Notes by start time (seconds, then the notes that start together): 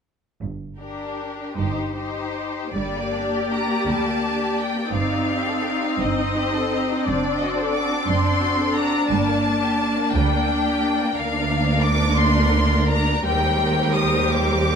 0.41 G1 G2
0.79 D4 G4 A#4
1.56 G1 G2 D#4 G4 C5
1.96 D#4 G4 C5
2.75 G1 G2 G3 A#3 G4 D5
2.95 A#3
3.13 D4
3.33 G4
3.50 D4 A#5
3.68 A#3
3.86 D2 G3 A5
4.04 A#3
4.22 D4
4.39 G4
4.57 D4 G5
4.75 A#3
4.93 G1 G2 C4 D#4 F5
5.10 D#4
5.26 G4
5.45 A4
5.63 G4
5.81 D#4
5.99 G1 G2 C4 C5 D#5
6.17 D#4
6.35 G4
6.53 A4
6.71 G4
6.91 D#4
7.07 F#1 F#2 C4 D4 D5
7.24 D4
7.40 F#4 D#5
7.50 D5
7.57 A4 C5
7.65 D5
7.74 F#4 D6
7.90 D4
8.06 F#1 F#2 C4 C6
8.23 D4
8.40 F#4
8.59 A4
8.74 F#4 A#5
8.91 D4
9.08 G1 G2 G3 A#3 A5
9.27 A#3
9.44 D4
9.62 G4
9.78 D4
9.95 A#3
10.13 D2 G3 G5
10.31 A#3
10.46 D4
10.64 G4
10.83 D4
10.98 A#3
11.14 D2 A#3 D4 A#4 D5 F5
11.84 D6
12.18 C6
12.90 A#5
13.25 D#2 G3 G4 C5 G5
13.95 D#6
14.31 D6